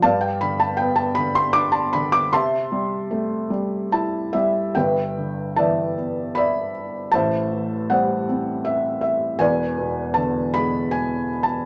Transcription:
<<
  \new Staff \with { instrumentName = "Felt piano" } { \time 3/4 \key c \major \tempo 4 = 78 << { a''16 g''16 b''16 a''16 g''16 a''16 b''16 c'''16 d'''16 a''16 b''16 d'''16 | c'''2 a''8 e''8 | \key g \major g''4 a''4 b''4 | a''4 fis''4 e''8 e''8 |
gis''4 a''8 b''8 \tuplet 3/2 { gis''4 a''8 } | } \\ { <d'' f''>4. r4. | <e'' a''>2 r4 | <b' e''>4 <d'' e''>4 <d'' e''>4 | <c'' e''>4 c''4. r8 |
<b' d''>4. r4. | } >> }
  \new Staff \with { instrumentName = "Felt piano" } { \clef bass \time 3/4 \key c \major g,8 d8 b8 d8 d'8 d8 | c8 g8 a8 g8 e'8 g8 | \key g \major <g,, g,>8 d8 e8 b4. | <a,, a,>8 e8 g8 c'4. |
<e,, e,>8 b,8 d8 gis4. | }
>>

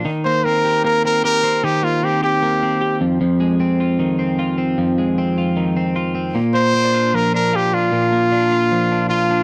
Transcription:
<<
  \new Staff \with { instrumentName = "Trumpet" } { \time 4/4 \key ees \major \tempo 4 = 153 r8 c''8 bes'4 bes'8 bes'8 bes'4 | g'8 f'8 g'8 g'2 r8 | r1 | r1 |
r8 c''4. bes'8 bes'8 g'8 f'8~ | f'2. f'4 | }
  \new Staff \with { instrumentName = "Clean electric guitar" } { \time 4/4 \key ees \major ees8 bes8 c'8 g'8 bes8 c'8 g'8 c'8 | ees8 bes8 c'8 g'8 bes8 c'8 g'8 f,8 | f,8 aes8 c'8 f'8 ees8 c'8 f'8 c'8 | f,8 aes8 c'8 f'8 ees8 c'8 f'8 c'8 |
bes,8 bes8 c'16 d'16 f'8 f8 d'8 f'8 d'8 | bes,8 bes8 d'8 f'8 f8 d'8 f'8 d'8 | }
>>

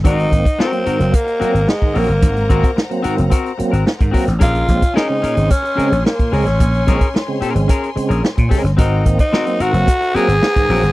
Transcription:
<<
  \new Staff \with { instrumentName = "String section" } { \time 4/4 \key aes \mixolydian \tempo 4 = 110 <c'' ges'' bes''>1~ | <c'' ges'' bes''>1 | <des'' aes'' c'''>1~ | <des'' aes'' c'''>1 |
<c'' ges'' bes''>1 | }
  \new Staff \with { instrumentName = "Clean electric guitar" } { \time 4/4 \key aes \mixolydian <c' ges' bes'>8 r8 <c' ges' bes'>16 r16 <c' ges' bes'>16 r8. <c' ges' bes'>16 r8. <c' ges' bes'>16 r16 | r8 <c' ges' bes'>16 r8. <c' ges' bes'>16 r16 <c' ges' bes'>16 r8 <c' ges' bes'>16 r8 <c' ges' bes'>16 r16 | <des' aes' bes'>8 r8 <des' aes' bes'>16 r16 <des' aes' bes'>16 r8. <des' aes' bes'>16 r8. <des' aes' bes'>16 r16 | r8 <des' aes' bes'>16 r8. <des' aes' bes'>16 r16 <des' aes' bes'>16 r8 <des' aes' bes'>16 r8 <des' aes' bes'>16 r16 |
<c' ges' bes'>8 r8 <c' ges' bes'>16 r16 <c' ges' bes'>16 r8. <c' ges' bes'>16 r8. <c' ges' bes'>16 r16 | }
  \new Staff \with { instrumentName = "Tenor saxophone" } { \time 4/4 \key aes \mixolydian ees'4 c'4 bes4 aes8 bes8~ | bes4 r2. | f'4 ees'4 des'4 bes8 des'8~ | des'4 r2. |
ees'8. ees'8. ges'4 aes'4. | }
  \new Staff \with { instrumentName = "Tonewheel organ" } { \clef bass \time 4/4 \key aes \mixolydian <aes, ees>16 r16 <bes c'>16 r8 <ges bes c'>16 <aes, ees>16 <ges bes c'>16 r8 <ges bes c'>16 r16 <bes c'>16 <aes, ees>16 <ges bes c'>16 r16 | <aes, ees>16 r16 <bes c'>16 r8 <ges bes c'>16 <aes, ees>16 <ges bes c'>16 r8 <ges bes c'>16 r16 <bes c'>16 <aes, ees>16 <ges bes c'>16 r16 | bes,16 r16 <aes c'>16 r8 <des aes c'>16 bes,16 <des aes c'>16 r8 <des aes c'>16 r16 <aes c'>16 bes,16 <des aes c'>16 r16 | bes,16 r16 <aes c'>16 r8 <des aes c'>16 bes,16 <des aes c'>16 r8 <des aes c'>16 r16 <aes c'>16 bes,16 <des aes c'>16 r16 |
<aes, ees>16 r16 <bes c'>16 r8 <ges bes c'>16 <aes, ees>16 <ges bes c'>16 r8 <ges bes c'>16 r16 <bes c'>16 <aes, ees>16 <ges bes c'>16 r16 | }
  \new Staff \with { instrumentName = "Slap bass" } { \clef bass \time 4/4 \key aes \mixolydian aes,,8 aes,,16 r4 ges,,16 r8. aes,,16 r8 bes,,16 g,,16 | aes,,8 aes,,16 r4 ges,,16 r8. aes,,16 r16 aes,16 r16 a,,16 | bes,,8 bes,,16 r4 aes,,16 r8. bes,,16 r8 des,16 a,,16 | bes,,8 bes,,16 r4 aes,,16 r8. bes,,16 r16 bes,16 r16 g,,16 |
aes,,8 aes,,16 r4 ges,,16 r8. aes,,16 r8 bes,,16 g,,16 | }
  \new DrumStaff \with { instrumentName = "Drums" } \drummode { \time 4/4 <hh bd>16 hh16 <hh bd>16 <hh bd>16 sn16 hh16 hh16 hh16 <hh bd>16 hh16 hh16 hh16 sn16 bd16 hho16 hh16 | <hh bd>16 hh16 <hh bd>16 <hh bd>16 sn16 hh16 hh16 hh16 <hh bd>16 hh16 hh16 hh16 sn16 <hh bd>16 <hho bd>16 <hh sn>16 | <hh bd>16 hh16 <hh bd>16 <hh bd>16 sn8 hh16 hh16 <hh bd>16 hh16 hh16 hh16 sn16 <hh bd>16 hho16 <hh sn>16 | <hh bd>16 hh16 <hh bd>16 <hh bd>16 sn8 hh16 hh16 <hh bd>16 hh16 hh16 hh16 sn16 <hh bd>16 <hho bd>16 <hh sn>16 |
<hh bd>8 <hh bd>16 <hh bd>16 sn16 hh16 hh16 hh16 <hh bd>16 hh16 hh16 hh16 sn16 <hh bd>16 hho16 <hh sn>16 | }
>>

